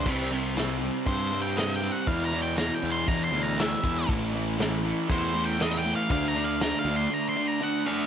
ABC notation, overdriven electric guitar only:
X:1
M:4/4
L:1/8
Q:1/4=119
K:C
V:1 name="Overdriven electric guitar" clef=bass
[C,G,C] [C,G,C] [C,G,C] [C,G,C] [C,G,C] [C,G,C] [C,G,C] [C,G,C] | [E,,B,,E,] [E,,B,,E,] [E,,B,,E,] [E,,B,,E,] [E,,B,,E,] [E,,B,,E,] [E,,B,,E,] [E,,B,,E,] | [A,,E,A,] [A,,E,A,] [A,,E,A,] [A,,E,A,] [A,,E,A,] [A,,E,A,] [A,,E,A,] [A,,E,A,] | [D,A,D] [D,A,D] [D,A,D] [D,A,D] [D,A,D] [D,A,D] [D,A,D] [D,A,D] |]